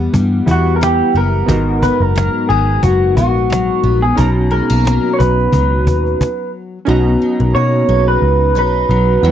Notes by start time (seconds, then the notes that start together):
Already playing: E3 G3 B3 E4 G4 F#5
0.00 cajon slap
0.13 G2 G3, cajon bass
0.46 E2 B3 E4 G4 F#5, cajon bass
0.51 F#4
0.66 cajon slap
0.68 cajon slap
0.76 A#4
0.81 G3 G4, cajon slap
1.01 cajon slap
1.13 F#1 B3, cajon slap
1.17 A#4
1.33 cajon slap
1.46 G#1 G#2 B3 D#4 F#4, cajon bass
1.50 A#4
1.68 cajon slap
1.83 B3 B4, cajon bass
2.00 F#1 A#4, cajon slap
2.16 F#3, cajon slap
2.35 cajon slap
2.49 G#1 B3 G#4, cajon slap
2.70 cajon slap
2.82 F#1 F#3 F#4, cajon bass
3.17 A#1 B3 F#4, cajon bass
3.36 cajon slap
3.37 cajon slap
3.50 F#3, cajon slap
3.71 cajon slap
3.83 A#1 B3, cajon slap
4.02 G#4, cajon slap
4.15 B1 B2 C#4 D#4 F#4 A#4, cajon bass
4.21 A#5
4.51 G#3 A#4, cajon slap
4.70 B1 A#3
4.85 F#3, cajon slap
5.04 cajon slap
5.14 C#5
5.19 B1 B4, cajon bass
5.39 cajon slap
5.52 C#2 F#3, cajon bass
5.87 D#2, cajon bass
6.06 cajon slap
6.07 cajon slap
6.21 cajon bass, cajon slap
6.85 B1 B2 C#4 D#4 F#4 B4
6.90 A#5
7.22 F#3
7.40 B1 F#4 A#4
7.55 B2 A#3 C#5
7.89 B1 D#4 G#4 B4
8.08 B4
8.22 C#2
8.55 B1 D#4 B4 C#5 A#5
8.89 B1 F#3
9.22 E2 E3 B3 E4 B4 D#5 F#5
9.26 G3